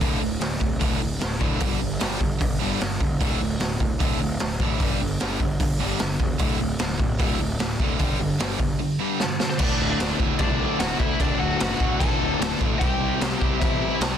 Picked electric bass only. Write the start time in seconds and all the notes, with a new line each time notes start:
0.01 D1
0.22 D1
0.41 D1
0.61 D1
0.81 D1
1.02 D1
1.23 D1
1.41 D1
1.61 G1
1.82 G1
2.01 G1
2.21 G1
2.41 G1
2.61 G1
2.81 G1
3.01 E1
3.21 D1
3.41 D1
3.60 D1
3.81 D1
4.01 D1
4.20 D1
4.41 D1
4.60 A1
4.80 G1
5.01 G1
5.22 G1
5.40 G1
5.60 G1
5.80 G1
6.00 G1
6.20 E1
6.40 D1
6.59 D1
6.80 D1
7.00 D1
7.20 D1
7.40 D1
7.59 D1
7.80 D1
8.00 G1
8.20 G1
8.40 G1
8.60 G1
9.60 D1
9.80 D1
10.00 D1
10.20 D1
10.40 C2
10.80 D1
11.00 D2
11.20 D1
11.41 D1
11.61 F#1
11.80 D1
12.01 A1
12.21 D1
12.40 D1
12.61 A1
12.81 C2
13.00 C2
13.21 C2
13.42 C2
13.62 A1
14.01 C2